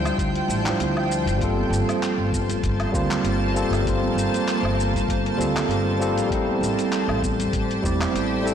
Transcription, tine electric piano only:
0, 0, Header, 1, 2, 480
1, 0, Start_track
1, 0, Tempo, 612245
1, 1107, Time_signature, 4, 2, 24, 8
1, 6695, End_track
2, 0, Start_track
2, 0, Title_t, "Tine electric piano"
2, 0, Program_c, 0, 4
2, 0, Control_c, 0, 64, 127
2, 0, Note_on_c, 0, 55, 74
2, 0, Note_on_c, 0, 62, 71
2, 0, Note_on_c, 0, 64, 70
2, 0, Note_on_c, 0, 65, 68
2, 0, Note_on_c, 0, 72, 102
2, 0, Note_on_c, 0, 76, 89
2, 474, Note_off_c, 0, 55, 0
2, 480, Note_off_c, 0, 62, 0
2, 487, Note_off_c, 0, 64, 0
2, 492, Note_on_c, 0, 55, 72
2, 496, Note_off_c, 0, 65, 0
2, 501, Note_off_c, 0, 76, 0
2, 507, Note_on_c, 0, 62, 69
2, 516, Note_on_c, 0, 64, 72
2, 536, Note_on_c, 0, 65, 71
2, 548, Note_off_c, 0, 72, 0
2, 548, Note_on_c, 0, 72, 84
2, 1066, Note_off_c, 0, 55, 0
2, 1075, Note_off_c, 0, 62, 0
2, 1075, Note_on_c, 0, 55, 94
2, 1080, Note_off_c, 0, 64, 0
2, 1090, Note_off_c, 0, 65, 0
2, 1090, Note_on_c, 0, 58, 87
2, 1096, Note_off_c, 0, 72, 0
2, 1103, Note_on_c, 0, 60, 88
2, 1115, Note_on_c, 0, 65, 90
2, 1117, Control_c, 0, 64, 0
2, 1129, Note_on_c, 0, 69, 105
2, 1254, Control_c, 0, 64, 127
2, 2265, Note_off_c, 0, 55, 0
2, 2272, Note_off_c, 0, 58, 0
2, 2279, Note_off_c, 0, 60, 0
2, 2285, Note_off_c, 0, 65, 0
2, 2291, Note_on_c, 0, 55, 96
2, 2292, Note_off_c, 0, 69, 0
2, 2299, Note_on_c, 0, 58, 93
2, 2302, Note_on_c, 0, 60, 90
2, 2309, Note_on_c, 0, 65, 95
2, 2319, Note_on_c, 0, 72, 106
2, 2753, Note_off_c, 0, 55, 0
2, 2756, Note_off_c, 0, 58, 0
2, 2758, Note_off_c, 0, 60, 0
2, 2762, Note_off_c, 0, 65, 0
2, 2767, Note_off_c, 0, 72, 0
2, 2773, Note_on_c, 0, 55, 85
2, 2778, Note_on_c, 0, 58, 78
2, 2785, Note_on_c, 0, 60, 81
2, 2793, Note_on_c, 0, 65, 83
2, 2800, Note_on_c, 0, 69, 105
2, 2987, Note_off_c, 0, 55, 0
2, 2996, Note_off_c, 0, 58, 0
2, 2996, Note_on_c, 0, 55, 77
2, 3000, Note_off_c, 0, 60, 0
2, 3004, Note_off_c, 0, 65, 0
2, 3007, Note_off_c, 0, 69, 0
2, 3014, Note_on_c, 0, 58, 67
2, 3028, Note_on_c, 0, 60, 69
2, 3039, Note_on_c, 0, 65, 73
2, 3053, Note_on_c, 0, 72, 90
2, 4190, Note_off_c, 0, 55, 0
2, 4199, Note_off_c, 0, 58, 0
2, 4206, Note_off_c, 0, 60, 0
2, 4211, Note_off_c, 0, 65, 0
2, 4213, Note_on_c, 0, 55, 90
2, 4218, Note_off_c, 0, 72, 0
2, 4222, Note_on_c, 0, 58, 79
2, 4225, Note_on_c, 0, 60, 83
2, 4231, Note_on_c, 0, 65, 83
2, 4237, Note_on_c, 0, 69, 98
2, 4674, Note_off_c, 0, 55, 0
2, 4678, Note_off_c, 0, 58, 0
2, 4680, Note_off_c, 0, 60, 0
2, 4683, Note_off_c, 0, 65, 0
2, 4686, Note_off_c, 0, 69, 0
2, 4697, Note_on_c, 0, 55, 97
2, 4704, Note_on_c, 0, 58, 87
2, 4709, Note_on_c, 0, 60, 89
2, 4714, Note_on_c, 0, 65, 88
2, 4723, Note_on_c, 0, 69, 107
2, 4910, Note_off_c, 0, 55, 0
2, 4919, Note_off_c, 0, 58, 0
2, 4919, Note_on_c, 0, 55, 93
2, 4922, Note_off_c, 0, 60, 0
2, 4924, Note_off_c, 0, 65, 0
2, 4929, Note_off_c, 0, 69, 0
2, 4933, Note_on_c, 0, 57, 85
2, 4952, Note_on_c, 0, 60, 84
2, 4956, Control_c, 0, 64, 0
2, 4963, Note_on_c, 0, 64, 83
2, 4976, Note_on_c, 0, 69, 99
2, 5109, Control_c, 0, 64, 127
2, 6107, Note_off_c, 0, 55, 0
2, 6114, Note_off_c, 0, 57, 0
2, 6123, Note_off_c, 0, 60, 0
2, 6129, Note_off_c, 0, 64, 0
2, 6133, Note_on_c, 0, 55, 100
2, 6135, Note_off_c, 0, 69, 0
2, 6140, Note_on_c, 0, 57, 88
2, 6146, Note_on_c, 0, 60, 91
2, 6152, Note_on_c, 0, 64, 88
2, 6160, Note_on_c, 0, 74, 106
2, 6594, Note_off_c, 0, 55, 0
2, 6597, Note_off_c, 0, 57, 0
2, 6600, Note_off_c, 0, 60, 0
2, 6603, Note_off_c, 0, 64, 0
2, 6607, Note_off_c, 0, 74, 0
2, 6607, Note_on_c, 0, 55, 93
2, 6615, Note_on_c, 0, 57, 84
2, 6623, Note_on_c, 0, 60, 86
2, 6626, Note_on_c, 0, 64, 83
2, 6635, Note_on_c, 0, 69, 107
2, 6695, Note_off_c, 0, 55, 0
2, 6695, Note_off_c, 0, 57, 0
2, 6695, Note_off_c, 0, 60, 0
2, 6695, Note_off_c, 0, 64, 0
2, 6695, Note_off_c, 0, 69, 0
2, 6695, End_track
0, 0, End_of_file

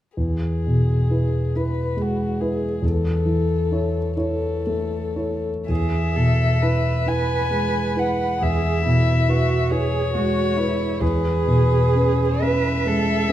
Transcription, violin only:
0, 0, Header, 1, 2, 480
1, 0, Start_track
1, 0, Key_signature, 4, "major"
1, 0, Tempo, 943396
1, 89, Time_signature, 12, 3, 24, 8
1, 567, Tempo, 865801
1, 2007, Tempo, 947867
1, 2487, Tempo, 1034483
1, 2967, Tempo, 925926
1, 3447, Tempo, 896861
1, 4407, Tempo, 865801
1, 5847, Tempo, 924499
1, 6807, Tempo, 854701
1, 7067, End_track
2, 0, Start_track
2, 0, Title_t, "Violin"
2, 0, Program_c, 0, 40
2, 92, Note_on_c, 0, 68, 37
2, 813, Note_on_c, 0, 71, 39
2, 822, Note_off_c, 0, 68, 0
2, 1066, Note_on_c, 0, 66, 42
2, 1074, Note_off_c, 0, 71, 0
2, 1285, Note_on_c, 0, 68, 43
2, 1294, Note_off_c, 0, 66, 0
2, 1533, Note_on_c, 0, 69, 48
2, 1542, Note_off_c, 0, 68, 0
2, 2246, Note_off_c, 0, 69, 0
2, 2249, Note_on_c, 0, 69, 50
2, 2856, Note_off_c, 0, 69, 0
2, 2974, Note_on_c, 0, 76, 63
2, 3696, Note_on_c, 0, 80, 59
2, 3704, Note_off_c, 0, 76, 0
2, 4179, Note_on_c, 0, 78, 49
2, 4187, Note_off_c, 0, 80, 0
2, 4415, Note_on_c, 0, 76, 61
2, 4423, Note_off_c, 0, 78, 0
2, 5123, Note_on_c, 0, 73, 69
2, 5131, Note_off_c, 0, 76, 0
2, 5849, Note_on_c, 0, 71, 61
2, 5857, Note_off_c, 0, 73, 0
2, 6575, Note_on_c, 0, 76, 83
2, 6583, Note_off_c, 0, 71, 0
2, 7067, Note_off_c, 0, 76, 0
2, 7067, End_track
0, 0, End_of_file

